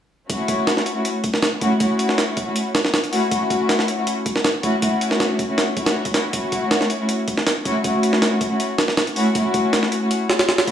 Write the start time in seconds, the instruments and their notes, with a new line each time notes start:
0.29 string section A3 C#4 E4 F#4, kick, closed hi-hat
0.48 kick, closed hi-hat
0.67 snare, closed hi-hat
0.77 snare
0.86 closed hi-hat
0.96 string section A3 C#4 E4 F#4
1.05 closed hi-hat
1.24 kick, closed hi-hat
1.34 snare
1.42 snare, closed hi-hat
1.61 string section A3 C#4 E4 F#4, kick, closed hi-hat
1.80 string section A3 C#4 E4 F#4, kick, closed hi-hat
1.99 closed hi-hat
2.09 snare
2.18 snare, closed hi-hat
2.37 kick, closed hi-hat
2.46 string section A3 C#4 E4 F#4
2.56 closed hi-hat
2.75 snare, closed hi-hat
2.85 snare
2.94 snare, closed hi-hat
3.04 closed hi-hat
3.12 string section A3 C#4 E4 F#4, open hi-hat
3.31 string section A3 C#4 E4 F#4, kick, closed hi-hat
3.50 kick, closed hi-hat
3.69 snare, closed hi-hat
3.79 snare
3.88 closed hi-hat
3.98 string section A3 C#4 E4 F#4
4.07 closed hi-hat
4.26 kick, closed hi-hat
4.36 snare
4.44 snare, closed hi-hat
4.63 string section A3 C#4 E4 F#4, kick, closed hi-hat
4.82 string section A3 C#4 E4 F#4, kick, closed hi-hat
5.01 closed hi-hat
5.11 snare
5.20 snare, closed hi-hat
5.39 kick, closed hi-hat
5.48 string section A3 C#4 E4 F#4
5.58 snare, closed hi-hat
5.76 string section A3 C#4 E4 F#4, kick, closed hi-hat
5.86 snare, closed hi-hat
6.05 kick, closed hi-hat
6.14 string section A3 C#4 E4 F#4, snare, closed hi-hat
6.33 string section A3 C#4 E4 F#4, kick, closed hi-hat
6.52 kick, closed hi-hat
6.71 snare, closed hi-hat
6.81 snare
6.90 closed hi-hat
7.00 string section A3 C#4 E4 F#4
7.09 closed hi-hat
7.28 kick, closed hi-hat
7.38 snare
7.47 snare, closed hi-hat
7.65 string section A3 C#4 E4 F#4, kick, closed hi-hat
7.84 string section A3 C#4 E4 F#4, kick, closed hi-hat
8.03 closed hi-hat
8.13 snare
8.22 snare, closed hi-hat
8.41 kick, closed hi-hat
8.51 string section A3 C#4 E4 F#4
8.60 closed hi-hat
8.78 snare, closed hi-hat
8.88 snare
8.97 snare, closed hi-hat
9.07 closed hi-hat
9.16 string section A3 C#4 E4 F#4, open hi-hat
9.35 string section A3 C#4 E4 F#4, kick, closed hi-hat
9.54 kick, closed hi-hat
9.73 snare, closed hi-hat
9.83 snare
9.92 closed hi-hat
10.02 string section A3 C#4 E4 F#4
10.11 closed hi-hat
10.30 snare, closed hi-hat
10.39 snare, closed hi-hat
10.49 snare, closed hi-hat
10.58 snare, closed hi-hat
10.67 string section A3 C#4 E4 F#4, kick, closed hi-hat